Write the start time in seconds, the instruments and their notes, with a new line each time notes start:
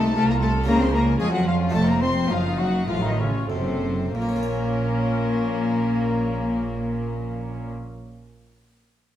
Already playing: double bass section C2, harpsichord C3 D#4 F4, cello section C3, cello A3, viola section D#4, violin section A4 A5
0.15 cello section C2, harpsichord C2, double bass section C2, cello A3, viola section F4, violin section A4 A5
0.28 cello A#3, violin section A#4 A#5
0.40 cello A3, violin section A4 A5
0.64 double bass section C#2, harpsichord C#3 C#4 F4, cello section C#3, cello A#3, violin section A#4
0.68 viola section C#4, violin section A#5
0.80 cello C4, violin section C5 C6
0.92 cello A#3, violin section A#4 A#5
1.19 double bass section F2, cello section F3, harpsichord F3, cello G#3, viola section C#4, violin section G#4 G#5
1.33 cello F#3, violin section F#4 F#5
1.47 cello F3, violin section F4 F5
1.69 harpsichord A3 D#4 F4
1.73 double bass section F1, harpsichord F2, cello section F2, cello A3, viola section C4, violin section A4 A5
1.87 cello A#3, violin section A#4 A#5
2.01 cello C4, violin section C5 C6
2.29 double bass section F#1, cello section F#2, harpsichord F#2, cello F3, viola section D#4, violin section F4 F5
2.59 cello F#3, violin section F#4 F#5
2.87 double bass section A1, harpsichord A2, cello section A2, cello F3, violin section F4 F5, viola section F4
3.02 cello D#3, violin section D#4 D#5
3.18 cello C#3, violin section C#4 C#5
3.49 double bass section F#1, cello section F#2, harpsichord F#2, cello C3, violin section C4 C5, viola section A4
4.14 double bass section A#1, cello section A#2, harpsichord A#2, violin section A#3 A#4, cello A#3, viola section C#4
4.22 harpsichord A#3
4.29 harpsichord C#4
4.36 harpsichord F4
4.43 harpsichord C#5